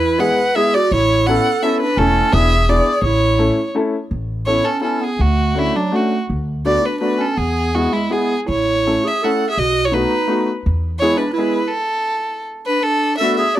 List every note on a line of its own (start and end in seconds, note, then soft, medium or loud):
0.00 0.28 E2 medium
0.00 0.21 E4 medium
0.00 0.21 B4 medium
0.18 0.37 G#3 medium
0.18 0.38 B3 soft
0.18 0.38 E4 medium
0.18 0.38 G#4 medium
0.18 0.57 B4 medium
0.18 0.57 F#5 medium
0.56 0.74 G#3 medium
0.56 0.74 B3 soft
0.56 0.74 E4 medium
0.56 0.77 G#4 medium
0.56 0.74 G#4 medium
0.56 0.76 E5 medium
0.74 0.91 F#4 medium
0.74 0.91 D5 loud
0.91 1.37 A1 medium
0.91 1.32 E4 medium
0.91 1.28 C#5 loud
1.27 1.46 B3 medium
1.27 1.45 C#4 medium
1.27 1.45 E4 medium
1.27 1.46 A4 medium
1.27 1.63 A4 medium
1.27 1.64 F#5 medium
1.62 1.80 B3 medium
1.62 1.80 C#4 medium
1.62 1.81 E4 medium
1.62 1.80 A4 medium
1.62 1.81 A4 medium
1.62 1.80 E5 medium
1.80 1.98 D4 medium
1.80 1.99 B4 medium
1.97 2.20 E1 medium
1.97 2.26 A3 medium
1.97 2.35 C#4 medium
1.97 2.26 C#4 medium
1.97 2.26 E4 medium
1.97 2.34 A4 medium
1.97 2.26 A4 medium
2.33 2.79 E1 loud
2.33 2.51 B3 medium
2.33 2.51 D4 soft
2.33 2.51 E4 medium
2.33 2.68 G#4 medium
2.33 2.51 G#4 medium
2.33 2.70 E5 loud
2.68 2.86 B3 medium
2.68 2.86 D4 soft
2.68 2.86 E4 medium
2.68 3.03 G#4 medium
2.68 2.86 G#4 medium
2.68 3.03 D5 medium
3.02 3.48 A1 medium
3.02 3.71 E4 medium
3.02 3.70 C#5 medium
3.39 3.57 A3 medium
3.39 3.57 C#4 soft
3.39 3.57 E4 soft
3.39 3.57 A4 medium
3.75 3.93 A3 medium
3.75 3.93 C#4 medium
3.75 3.94 E4 medium
3.75 3.94 A4 medium
4.11 4.58 A1 medium
4.46 4.66 B3 soft
4.46 4.67 C#4 soft
4.46 4.66 E4 medium
4.46 4.67 E4 soft
4.46 4.66 A4 soft
4.46 4.66 C#5 medium
4.65 4.82 C#4 medium
4.65 4.82 A4 medium
4.81 5.01 B3 soft
4.81 5.01 C#4 soft
4.81 5.02 C#4 medium
4.81 5.02 E4 soft
4.81 5.02 A4 medium
4.81 5.05 A4 medium
5.01 5.20 B3 medium
5.01 5.23 G#4 medium
5.18 5.66 D2 medium
5.18 5.57 A3 medium
5.18 5.60 F#4 medium
5.55 5.74 A3 medium
5.55 5.77 A3 medium
5.55 5.74 C#4 soft
5.55 5.75 D4 soft
5.55 5.77 E4 medium
5.55 5.75 F#4 medium
5.76 5.95 F#3 medium
5.76 5.97 D4 medium
5.92 6.11 A3 medium
5.92 6.20 A3 medium
5.92 6.11 C#4 soft
5.92 6.11 D4 soft
5.92 6.11 F#4 medium
5.92 6.21 F#4 medium
6.30 6.76 D2 medium
6.65 6.84 A3 medium
6.65 6.84 B3 soft
6.65 6.84 D4 medium
6.65 6.84 F#4 medium
6.65 6.87 D5 medium
6.83 7.00 D4 medium
6.83 7.00 B4 medium
7.00 7.20 A3 medium
7.00 7.20 B3 soft
7.00 7.20 D4 soft
7.00 7.20 D4 medium
7.00 7.20 F#4 medium
7.00 7.22 B4 medium
7.19 7.38 C#4 medium
7.19 7.39 A4 medium
7.36 7.85 E2 medium
7.36 7.73 B3 medium
7.36 7.76 G#4 medium
7.73 7.93 G#3 soft
7.73 7.94 B3 medium
7.73 7.94 B3 soft
7.73 7.94 E4 soft
7.73 7.95 F#4 medium
7.73 7.94 G#4 medium
7.93 8.11 G#3 medium
7.93 8.14 E4 medium
8.09 8.30 G#3 soft
8.09 8.39 B3 medium
8.09 8.30 B3 soft
8.09 8.30 E4 soft
8.09 8.30 G#4 soft
8.09 8.40 G#4 medium
8.46 8.96 A1 medium
8.46 9.06 E4 medium
8.46 9.09 C#5 medium
8.87 9.06 A3 soft
8.87 9.05 C#4 soft
8.87 9.06 E4 soft
8.87 9.05 A4 medium
9.04 9.24 G#4 medium
9.04 9.26 E5 medium
9.23 9.42 A3 soft
9.23 9.42 C#4 soft
9.23 9.42 E4 soft
9.23 9.49 A4 medium
9.23 9.42 A4 medium
9.23 9.49 F#5 medium
9.50 9.60 G#4 medium
9.50 9.60 E5 medium
9.57 10.04 B1 medium
9.57 9.89 F#4 medium
9.57 9.87 D#5 loud
9.85 9.98 E4 soft
9.85 9.96 C#5 medium
9.92 10.11 A3 medium
9.92 10.11 B3 medium
9.92 10.12 D#4 medium
9.92 10.12 F#4 medium
9.92 10.48 B4 medium
9.96 10.49 D#4 medium
10.28 10.47 A3 medium
10.28 10.47 B3 soft
10.28 10.47 D#4 medium
10.28 10.47 F#4 medium
10.66 11.13 E2 medium
10.99 11.20 G#3 medium
10.99 11.21 B3 medium
10.99 11.18 E4 medium
10.99 11.20 E4 medium
10.99 11.20 G#4 medium
10.99 11.19 C#5 loud
11.17 11.32 D4 medium
11.17 11.33 B4 medium
11.33 11.69 E4 medium
11.33 11.70 B4 medium
11.37 11.56 G#3 medium
11.37 11.57 B3 soft
11.37 11.57 E4 soft
11.37 11.57 G#4 medium
11.68 12.45 A4 medium
12.66 12.82 D4 medium
12.66 12.84 B4 medium
12.82 13.18 D4 medium
12.82 13.17 A4 loud
13.18 13.39 A3 medium
13.18 13.40 B3 medium
13.18 13.37 A4 medium
13.18 13.36 E5 medium
13.22 13.40 D4 soft
13.22 13.40 F#4 medium
13.37 13.58 G#4 medium
13.37 13.56 E5 medium
13.55 13.60 F#4 medium
13.55 13.60 D5 medium